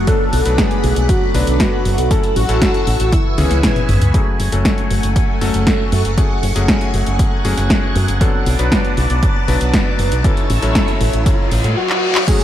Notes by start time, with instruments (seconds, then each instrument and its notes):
Already playing: string machine A3 F#5
0.07 electric grand piano F#3 B3 D4 A4, analog synth lead A4, string machine B5 D6, kick, closed hi-hat
0.33 fingered electric bass B1, open hi-hat
0.45 fingered electric bass B1, electric grand piano F#3 B3 D4 B4, closed hi-hat
0.58 analog synth lead G#4, kick, snare, closed hi-hat
0.71 closed hi-hat
0.84 fingered electric bass B1, open hi-hat
0.96 fingered electric bass B1, closed hi-hat
1.09 analog synth lead F#4, kick, closed hi-hat
1.34 fingered electric bass B1, electric grand piano F#3 B3 D4 B4, analog synth lead D4, open hi-hat
1.47 fingered electric bass B1, closed hi-hat
1.60 analog synth lead F#4, kick, snare, closed hi-hat
1.85 fingered electric bass F#1, open hi-hat
1.98 fingered electric bass B1, closed hi-hat
2.11 electric grand piano F#3 C#4 E4 A4, string machine A4 F#5 C#6 E6, analog synth lead A4, kick, closed hi-hat
2.23 closed hi-hat
2.36 fingered electric bass A1, analog synth lead F#4, open hi-hat
2.49 fingered electric bass A1, electric grand piano F#3 C#4 E4 A4, closed hi-hat
2.62 kick, snare, closed hi-hat
2.74 closed hi-hat
2.87 fingered electric bass A1, open hi-hat
3.00 fingered electric bass A1, closed hi-hat
3.12 analog synth lead E4, string machine B4 G#5, kick, closed hi-hat
3.38 fingered electric bass C#2, electric grand piano E3 B3 C#4 G#4, open hi-hat, high tom
3.51 fingered electric bass C#2, snare, closed hi-hat
3.63 kick, snare, closed hi-hat, mid tom
3.76 closed hi-hat, mid tom
3.89 fingered electric bass G#1, mid tom, open hi-hat
4.01 fingered electric bass C#2, closed hi-hat, mid tom
4.14 electric grand piano F#3 A3 C#4 G#4, string machine A3 F#5 G#5 C#6, kick, closed hi-hat, riser
4.40 fingered electric bass F#1, open hi-hat
4.52 fingered electric bass F#1, electric grand piano F#3 A3 C#4 A4, closed hi-hat
4.65 kick, snare, closed hi-hat
4.78 closed hi-hat
4.90 fingered electric bass F#1, open hi-hat
5.03 fingered electric bass F#1, closed hi-hat
5.16 kick, closed hi-hat
5.41 fingered electric bass F#1, electric grand piano F#3 A3 C#4 A4, open hi-hat
5.54 fingered electric bass F#1, closed hi-hat
5.67 kick, snare, closed hi-hat
5.92 fingered electric bass F#2, open hi-hat
6.05 fingered electric bass F#1, closed hi-hat
6.18 electric grand piano F#3 A3 C#4 G#4, kick, closed hi-hat
6.43 fingered electric bass F#1, open hi-hat
6.56 fingered electric bass F#1, electric grand piano F#3 A3 C#4 G#4, closed hi-hat
6.68 kick, snare, closed hi-hat
6.81 closed hi-hat
6.94 fingered electric bass F#1, open hi-hat
7.07 fingered electric bass F#1, closed hi-hat
7.19 kick, closed hi-hat
7.45 fingered electric bass F#1, electric grand piano F#3 A3 C#4 G#4, open hi-hat
7.57 fingered electric bass F#1, snare, closed hi-hat
7.70 kick, snare, closed hi-hat
7.96 fingered electric bass F#2, open hi-hat
8.08 fingered electric bass F#1, closed hi-hat
8.21 electric grand piano F#3 B3 D4 A4, string machine B4 A5 D6, kick, closed hi-hat
8.46 fingered electric bass B1, open hi-hat
8.59 fingered electric bass B1, electric grand piano F#3 B3 D4 B4, closed hi-hat
8.72 kick, snare, closed hi-hat
8.85 closed hi-hat
8.97 fingered electric bass B1, open hi-hat
9.10 fingered electric bass B1, closed hi-hat
9.23 kick, closed hi-hat
9.48 fingered electric bass B1, electric grand piano F#3 B3 D4 B4, open hi-hat
9.61 fingered electric bass B1, closed hi-hat
9.74 kick, snare, closed hi-hat
9.99 fingered electric bass F#1, open hi-hat
10.12 fingered electric bass B1, closed hi-hat
10.24 electric grand piano F#3 C#4 E4 A4, string machine C#5 A5 E6, kick, closed hi-hat
10.37 closed hi-hat
10.50 fingered electric bass A1, open hi-hat
10.62 fingered electric bass A1, electric grand piano F#3 C#4 E4 A4, closed hi-hat
10.75 kick, snare, closed hi-hat
10.88 closed hi-hat
11.01 fingered electric bass A1, open hi-hat
11.13 fingered electric bass A1, closed hi-hat
11.26 kick, closed hi-hat, reverse cymbal
11.51 fingered electric bass A1, open hi-hat
11.64 fingered electric bass A2, snare, closed hi-hat
11.77 analog synth lead F#4
11.90 clap
12.15 clap
12.28 electric grand piano F#3 A3 C#4 G#4, string machine A3 F#5 C#6, analog synth lead G#4, kick, closed hi-hat, tambourine, crash
12.40 closed hi-hat, tambourine